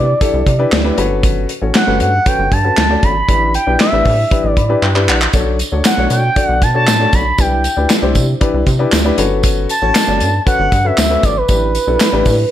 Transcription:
Already playing: C3 D5
0.20 D4 E4 G4 A4, kick, closed hi-hat
0.34 C2
0.46 C3, kick, closed hi-hat
0.59 D4 E4 G4 B4
0.72 D2, snare, clap, closed hi-hat
0.84 D4 E4 G4 B4
0.97 G1 C#4 F#4 A4 B4, closed hi-hat
1.23 kick, closed hi-hat
1.49 closed hi-hat
1.62 A1 C#4 F#4 A4 C#5
1.74 F#5, snare, clap, closed hi-hat
1.87 G1 C#4 F#4 A4 B4
2.00 G2 F#5, closed hi-hat
2.25 C#4 F#4 A4 B4 G5, kick, closed hi-hat
2.39 G1
2.52 G2 A5, kick, closed hi-hat
2.64 C#4 F#4 A4 B4
2.77 D2, snare, clap, closed hi-hat
2.90 C#4 F#4 A4 D5
3.03 G#1 B5, kick, closed hi-hat
3.28 A1 D4 E4 G4 B4, kick, closed hi-hat
3.54 G5, closed hi-hat
3.67 B1 D4 E4 G4 B4
3.80 E5, snare, clap, closed hi-hat
3.92 A1 D4 E4 G4 B4
4.05 A2, kick, open hi-hat
4.31 D4 E4 G4 B4, kick, closed hi-hat
4.44 A1
4.50 D5
4.57 A2 B5, kick, closed hi-hat
4.69 D4 E4 G4 B4
4.82 G2 G5, clap
4.95 D4 E4 G4 B4, clap
5.08 A#1 F#5, clap
5.22 clap
5.33 B1 D4 F#4 A4 C#5, kick, closed hi-hat, tambourine
5.59 closed hi-hat, tambourine
5.72 D2 D4 F#4 A4 C#5
5.84 F#5, snare, clap, closed hi-hat, tambourine
5.97 B1 D4 F#4 A4 C#5
6.10 B2 G5, closed hi-hat, tambourine
6.36 D4 F#4 A4 D5, kick, closed hi-hat
6.46 B1 F#5
6.62 B2 A5, kick, closed hi-hat, tambourine
6.74 D4 F#4 A4 C#5 A5
6.87 A2, snare, clap, closed hi-hat, tambourine
7.00 D4 F#4 A4 C#5
7.13 B1 B5, kick, closed hi-hat, tambourine
7.38 C2 D4 E4 G4 B4 G5, kick, closed hi-hat, tambourine
7.64 closed hi-hat, tambourine
7.77 D2 D4 E4 G4 B4
7.89 snare, clap, closed hi-hat, tambourine
8.02 C2 D4 E4 G4 C5
8.15 C3, kick, closed hi-hat, tambourine
8.41 D4 E4 G4 B4, kick, closed hi-hat
8.54 C2
8.67 C3, kick, closed hi-hat, tambourine
8.79 D4 E4 G4 B4
8.92 D2, snare, clap, closed hi-hat, tambourine
9.05 D4 E4 G4 B4
9.18 G1 C#4 F#4 A4 B4, closed hi-hat, tambourine
9.43 kick, closed hi-hat, tambourine
9.69 A5, closed hi-hat, tambourine
9.82 A1 C#4 F#4 A4 C#5
9.95 snare, clap, closed hi-hat, tambourine
10.08 G1 C#4 F#4 A4 D5
10.20 G2, closed hi-hat, tambourine
10.46 C#4 F#4 A4 B4 F#5, kick, closed hi-hat, tambourine
10.59 G1
10.72 G2, kick, closed hi-hat, tambourine
10.84 C#4 F#4 A4 B4 E5
10.98 D2, snare, clap, closed hi-hat, tambourine
11.10 C#4 F#4 A4 B4
11.23 G#1 D5, kick, closed hi-hat, tambourine
11.37 B4
11.48 A1 D4 E4 G4 B4, kick, closed hi-hat, tambourine
11.75 closed hi-hat, tambourine
11.87 B1 D4 E4 G4 A4
12.00 snare, clap, closed hi-hat, tambourine
12.13 A1 D4 E4 G4 B4
12.25 A2, kick, open hi-hat, tambourine

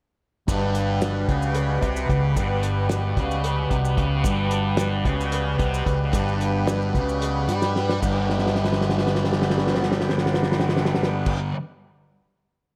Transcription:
0.48 G1 G2 B2 G3 B3 G4 B4, kick, closed hi-hat, maracas
0.75 closed hi-hat, maracas
1.02 snare, closed hi-hat, maracas
1.28 C#2 C#3, kick, closed hi-hat
1.42 maracas
1.55 closed hi-hat
1.81 C2 C3, kick, closed hi-hat
1.96 maracas
2.09 C#2 C#3, kick, snare, closed hi-hat
2.36 G1 G2, kick, closed hi-hat, maracas
2.63 closed hi-hat, maracas
2.89 snare, closed hi-hat, maracas
3.17 C#2 C#3, kick, snare, closed hi-hat
3.31 maracas
3.44 closed hi-hat
3.70 C2 C3, kick, closed hi-hat
3.85 maracas
3.97 C#2 C#3, kick, closed hi-hat
4.24 G1 G2, kick, closed hi-hat, maracas
4.51 closed hi-hat, maracas
4.77 snare, closed hi-hat, maracas
5.05 C#2 C#3, kick, closed hi-hat
5.21 maracas
5.32 closed hi-hat
5.58 C2 C3, kick, closed hi-hat
5.74 maracas
5.85 C#2 C#3, kick, closed hi-hat
6.12 G1 G2, kick, closed hi-hat, maracas
6.28 maracas
6.41 closed hi-hat, maracas
6.67 snare, closed hi-hat, maracas
6.82 maracas
6.94 C#2 C#3, kick, closed hi-hat, maracas
7.09 maracas
7.22 closed hi-hat, maracas
7.48 G2 G3, closed hi-hat
7.62 snare, maracas
7.76 snare
7.89 snare
8.00 G1 G2 D3 G3 B3 G4 B4, kick, crash, maracas
8.05 G3
8.30 snare
8.38 snare
8.47 snare
8.55 snare
8.65 snare
8.73 snare
8.81 snare
8.90 snare
8.98 snare
9.07 snare
9.15 snare
9.24 snare
9.33 snare
9.42 snare
9.50 snare
9.58 snare
9.67 snare
9.75 snare
9.83 snare
9.92 snare
10.01 snare
10.09 snare
10.18 snare
10.26 snare
10.34 snare
10.43 snare
10.52 snare
10.60 snare
10.69 snare
10.77 snare
10.85 snare
10.95 snare
11.03 snare
11.26 kick, crash

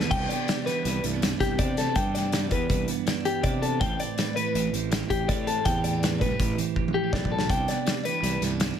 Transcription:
Already playing: E2 E3 B4
0.10 C2 C3 B3 D4 G4 G5, kick, crash
0.29 B3 D5, closed hi-hat
0.48 G4, snare, closed hi-hat
0.66 E3 B3 B4, snare, closed hi-hat
0.85 C2 D4, snare, closed hi-hat
1.03 C2 G2 A3, closed hi-hat
1.13 B3
1.22 D4, snare, closed hi-hat
1.40 C2 B3 G4, kick, snare, closed hi-hat
1.58 C3 B3 D4 G4 D5, kick, closed hi-hat
1.77 A3 A4, snare, closed hi-hat
1.87 B3
1.95 G2 C3 B3 D4 G4 G5, kick, closed hi-hat
2.15 A3 D5, snare, closed hi-hat
2.24 B3
2.32 G4, snare, closed hi-hat
2.51 E2 E3 B3 B4, kick, closed hi-hat
2.70 C2 D4, kick, closed hi-hat
2.88 G2 B3, closed hi-hat
3.07 D4, snare, closed hi-hat
3.25 B3 G4, closed hi-hat
3.43 C3 B3 D4 G4 D5, kick, closed hi-hat
3.62 B3 A4, closed hi-hat
3.81 A1 A2 C4 G4 B4 G5, kick, closed hi-hat
4.00 C4 D5, closed hi-hat
4.18 B4, snare, closed hi-hat
4.36 E3 A3 B4, closed hi-hat
4.46 C4
4.55 A1 G4, closed hi-hat
4.73 A1 E3 C4, closed hi-hat
4.92 G4, snare, closed hi-hat
5.10 A1 C4 G4, kick, closed hi-hat
5.29 A2 C4 G4 B4 D5, kick, closed hi-hat
5.47 C4 A4, closed hi-hat
5.65 E2 A2 C4 G4 B4 G5, kick, closed hi-hat
5.84 A3 D5, closed hi-hat
5.93 C4
6.03 B4, snare, closed hi-hat
6.21 C2 E3 A3 B4, kick, closed hi-hat
6.31 C4
6.39 A1 G4, kick, snare, closed hi-hat
6.58 E3 C4, closed hi-hat
6.76 G4, kick
6.88 high tom
6.94 A3 G4
7.04 C4
7.13 B1 A2 C4 G4 B4 D5, kick, snare
7.25 kick
7.31 A3 A4
7.39 C4, snare
7.49 C2 C3 B3 D4 G4 G5, kick, closed hi-hat
7.68 B3 D5, snare, closed hi-hat
7.86 G4, snare, closed hi-hat
8.04 E3 A3 B4, closed hi-hat
8.13 B3
8.22 C2 D4, snare, closed hi-hat
8.40 C2 G2 A3, snare, closed hi-hat
8.50 B3
8.60 D4, snare, closed hi-hat

